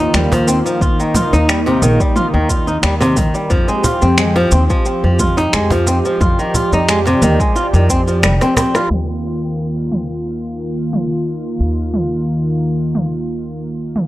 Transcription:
Already playing: D#3 A#3 D#4 F4
0.14 D#2 G3, finger snap, mid tom, shaker
0.32 F3, cajon bass, cajon slap, shaker
0.48 C4, cajon slap, shaker
0.65 F3, shaker
0.80 D#2 D#4 F4, kick, shaker
1.00 D#3, shaker
1.14 F4, cajon bass, mid tom, shaker
1.33 D#2 D#4, shaker
1.49 G3, finger snap, shaker
1.66 C3, cajon slap
1.82 A#1 D#3, shaker
2.00 G3, kick, shaker
2.16 F4, mid tom, shaker
2.34 D#2 D#3
2.49 F4, kick, shaker
2.67 D#4, shaker
2.83 D#2 G3, finger snap, shaker
3.00 C3, cajon slap, shaker
3.16 D#3, kick, cajon bass, mid tom, shaker
3.34 G3, cajon slap, shaker
3.50 F2 F3 C4 G4, kick, shaker
3.68 G#3, shaker
3.84 F4, cajon bass, shaker
4.02 F2 C4, shaker
4.18 G#3, finger snap, mid tom, shaker
4.36 F3, cajon slap
4.51 D#2 C4, shaker
4.70 F3, kick, shaker
4.85 C4, shaker
5.04 F2 F3
5.19 F4, kick, mid tom, shaker
5.37 D#4, cajon slap, shaker
5.53 F2 G#3, finger snap, shaker
5.70 F3, cajon bass, cajon slap, shaker
5.87 C4, cajon slap, shaker
6.05 F3, shaker
6.21 F2 F4 D5, kick, mid tom, shaker
6.39 D#3, shaker
6.54 F4, cajon bass, shaker
6.72 F2 D#4, shaker
6.89 G#3, finger snap, shaker
7.06 C3, cajon slap, shaker
7.22 D#2 D#3, mid tom, shaker
7.40 G#3, kick, shaker
7.56 F4, shaker
7.74 F2 D#3, cajon slap, shaker
7.89 C4, kick, shaker
8.08 F3, shaker
8.23 F1 G3, finger snap, cross-stick, mid tom, shaker
8.41 C4, cross-stick, cajon slap, shaker
8.57 C4, cajon bass, cross-stick, shaker
8.75 F4, cross-stick, cajon slap, shaker
8.90 D#2 D#3 A#3 F4, mid tom
9.92 mid tom
10.93 mid tom
11.60 D#2
11.94 mid tom
12.95 mid tom
13.96 mid tom

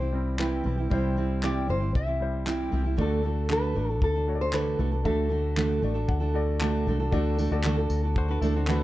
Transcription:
Already playing: C2 G3 E4 C5
0.00 C4 E4 G4
0.13 G3 C4 E4
0.39 C3 G3 C4 E4 G4 B4, clap
0.64 B1 G3 C4 E4 G4
0.77 C4 E4 G4
0.90 C2 C3 G3 C4 E4 G4 C5, kick
1.16 G3 C4 E4 G4
1.43 C3 G3 C4 E4 G4 D5, clap
1.68 G1 G3 C4 E4 G4 C5
1.80 C4 E4 G4
1.95 C2 E5, kick
2.06 C4 E4 G4
2.20 G3 E4 C5
2.45 C3 G3 C4 E4 G4, clap
2.72 C2 G3 C4 E4 G4
2.84 C4 E4 G4
2.97 D2 D3 A3 D4 F4 F#4 A4 D5, kick
3.01 F#4 A4
3.23 A3 D4 F#4 A4
3.49 D3 A3 D4 F#4 A4 B4, clap
3.75 A1 A3 D4 F#4 A4
3.89 D4 F#4 A4
4.02 D2 A4, kick
4.14 D4 F#4 A4
4.27 A3 F#4 C#5
4.35 D5
4.41 C5
4.53 D3 A3 D4 F#4 A4 B4, clap
4.78 C2 A3 D4 F#4 A4
4.92 D4 F#4 A4
5.03 D2 D3 A3 D4 F#4 A4 E5, kick
5.29 A3 D4 F#4 A4
5.56 D3 A3 D4 F#4 A4, clap
5.82 A1 A3 D4 F#4 A4 D5
5.94 D4 F#4 A4
6.08 D2 F#5, kick
6.20 D4 F#4 A4
6.34 A3 F#4 D5
6.59 D3 A3 D4 F#4 A4 A5, clap
6.87 C2 A3 D4 F#4 A4
6.99 D4 F#4 A4
7.11 D2 D3 A3 D4 F#4 A4 D5, kick
7.38 A3 D4 F#4 A4, tambourine
7.51 D2 A3 D4 F#4 A4 D5
7.63 D3 A3 D4 F#4 A4, clap
7.77 D4 F#4 A4
7.90 D2, tambourine
8.03 D4 F#4 A4
8.16 F#4 C5, kick
8.28 D4 F#4 A4 B4
8.41 D2 A3 D4 E4 F#4 A4, tambourine
8.56 C4 D4 F#4 A4
8.67 D3 A3 D4 F#4 A4 B4, clap

